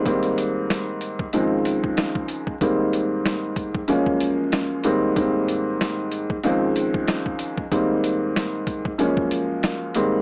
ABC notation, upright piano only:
X:1
M:4/4
L:1/8
Q:"Swing 16ths" 1/4=94
K:Ab
V:1 name="Upright piano" clef=bass
[A,,E,G,B,C]4 [D,,E,F,A,C]4 | [A,,E,G,B,C]4 [_G,,F,A,B,D]3 [A,,E,=G,B,C] | [A,,E,G,B,C]4 [D,,E,F,A,C]4 | [A,,E,G,B,C]4 [_G,,F,A,B,D]3 [A,,E,=G,B,C] |]